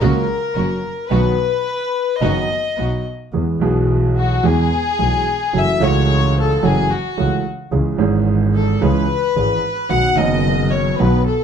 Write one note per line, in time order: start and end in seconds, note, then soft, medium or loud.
0.00 0.24 C#2 medium
0.00 0.25 C#2 medium
0.00 0.25 C#3 medium
0.00 0.25 F#3 medium
0.00 0.24 A#3 medium
0.00 0.25 A#3 medium
0.00 0.24 C#4 medium
0.00 0.24 F#4 medium
0.00 0.25 F#4 medium
0.00 1.07 A#4 medium
0.55 0.79 F#1 medium
0.55 0.79 F#2 medium
0.55 0.80 F#3 medium
0.55 0.79 A#3 soft
0.55 0.79 C#4 soft
0.55 0.79 F#4 soft
1.08 1.34 B1 medium
1.08 1.34 B2 medium
1.08 1.34 D#3 medium
1.08 1.34 F#3 medium
1.08 1.33 B3 medium
1.08 1.34 B3 medium
1.08 1.34 D#4 medium
1.08 1.34 F#4 medium
1.08 2.20 B4 medium
2.19 2.45 F#1 medium
2.19 2.45 F#2 medium
2.19 2.45 D#3 medium
2.19 2.45 F#3 medium
2.19 2.45 B3 medium
2.19 2.45 D#4 medium
2.19 2.45 F#4 medium
2.19 3.05 D#5 medium
2.77 3.01 B1 medium
2.77 3.02 B1 medium
2.77 3.02 B2 soft
2.77 3.01 B3 soft
2.77 3.01 D#4 soft
2.77 3.02 F#4 soft
3.33 3.57 E2 medium
3.33 3.57 E3 medium
3.33 3.57 G#3 soft
3.33 3.57 B3 soft
3.33 3.57 G#4 medium
3.60 4.40 B1 medium
3.60 4.40 B2 medium
3.60 4.39 E3 medium
3.60 4.40 G#3 medium
3.60 4.41 B3 medium
3.60 4.41 G#4 medium
4.17 4.43 F#4 medium
4.43 4.67 E2 medium
4.43 4.67 E2 loud
4.43 4.67 E3 medium
4.43 4.67 G#3 medium
4.43 4.67 B3 medium
4.43 4.67 G#4 medium
4.43 5.55 G#4 medium
4.99 5.22 B1 medium
4.99 5.23 B1 medium
4.99 5.22 B2 medium
4.99 5.22 E3 soft
4.99 5.22 G#3 soft
4.99 5.22 B3 soft
4.99 5.22 G#4 medium
5.53 5.77 F#1 medium
5.53 5.77 F#2 medium
5.53 5.77 E3 medium
5.53 5.77 F#3 medium
5.53 5.77 A3 soft
5.53 5.77 C#4 soft
5.53 5.77 F#4 medium
5.53 5.83 E5 loud
5.78 6.59 C#2 medium
5.78 6.58 C#3 medium
5.78 6.57 E3 medium
5.78 6.58 A3 medium
5.78 6.59 C#4 medium
5.78 6.59 F#4 medium
5.84 6.37 C#5 loud
6.40 6.63 A4 medium
6.63 6.86 F#1 loud
6.63 6.86 F#2 medium
6.63 6.86 E3 medium
6.63 6.86 F#3 medium
6.63 6.86 A3 medium
6.63 6.86 C#4 medium
6.63 6.86 F#4 medium
6.63 6.92 G#4 medium
6.92 7.45 F#4 medium
7.17 7.40 C#2 medium
7.17 7.41 C#2 medium
7.17 7.40 C#3 medium
7.17 7.40 E3 medium
7.17 7.40 A3 soft
7.17 7.40 C#4 soft
7.17 7.40 F#4 medium
7.71 7.94 C#2 medium
7.71 7.95 C#2 medium
7.71 7.94 C#3 medium
7.71 7.94 E3 medium
7.71 7.94 G#3 soft
7.71 7.94 C#4 soft
7.71 7.94 G#4 medium
7.96 8.76 G#1 medium
7.96 8.77 G#1 medium
7.96 8.76 G#2 medium
7.96 8.75 E3 medium
7.96 8.76 G#3 medium
7.96 8.76 C#4 medium
8.01 8.77 G#4 medium
8.55 8.79 A4 medium
8.81 9.04 C#2 medium
8.81 9.04 C#2 loud
8.81 9.04 C#3 medium
8.81 9.04 E3 medium
8.81 9.04 G#3 medium
8.81 9.04 C#4 medium
8.81 9.04 G#4 medium
8.81 9.90 B4 loud
9.36 9.59 G#1 medium
9.36 9.59 G#2 medium
9.36 9.59 E3 medium
9.36 9.59 G#3 soft
9.36 9.59 C#4 soft
9.36 9.59 G#4 medium
9.89 10.13 B1 medium
9.89 10.13 B2 medium
9.89 10.12 D#3 medium
9.89 10.13 F#3 soft
9.89 10.13 B3 soft
9.89 10.13 F#4 medium
9.89 10.17 F#5 loud
10.16 10.96 F#1 loud
10.16 10.96 F#1 medium
10.16 10.96 F#2 medium
10.16 10.95 D#3 medium
10.16 10.96 F#3 medium
10.16 10.96 B3 medium
10.16 10.72 D#5 loud
10.20 10.97 F#4 medium
10.70 10.99 C#5 medium
10.99 11.23 B1 medium
10.99 11.23 B2 medium
10.99 11.23 D#3 medium
10.99 11.23 F#3 medium
10.99 11.23 B3 medium
10.99 11.23 F#4 medium
10.99 11.27 B4 medium
11.26 11.44 A4 medium